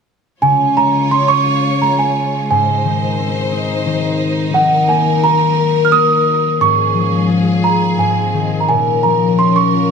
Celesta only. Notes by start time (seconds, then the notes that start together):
0.42 G#5
0.77 A#5
1.11 C6
1.28 C#6
1.82 A#5
1.99 G#5
2.51 G#5
4.54 F#5
4.89 G#5
5.24 A#5
5.85 F6
5.92 D#6
6.61 C#6
7.64 A#5
7.99 G#5
8.60 A#5
8.69 G#5
9.03 A#5
9.39 C6
9.56 C#6